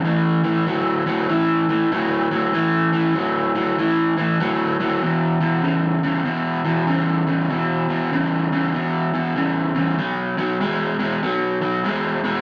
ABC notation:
X:1
M:4/4
L:1/8
Q:"Swing" 1/4=97
K:E
V:1 name="Overdriven electric guitar" clef=bass
[A,,E,] [A,,E,] [A,,F,] [A,,F,] [A,,E,] [A,,E,] [A,,F,] [A,,F,] | [A,,E,] [A,,E,] [A,,F,] [A,,F,] [A,,E,] [A,,E,] [A,,F,] [A,,F,] | [E,,B,,] [E,,B,,] [E,,C,] [E,,C,] [E,,B,,] [E,,B,,] [E,,C,] [E,,C,] | [E,,B,,] [E,,B,,] [E,,C,] [E,,C,] [E,,B,,] [E,,B,,] [E,,C,] [E,,C,] |
[B,,F,] [B,,F,] [B,,G,] [B,,G,] [B,,F,] [B,,F,] [B,,G,] [B,,G,] |]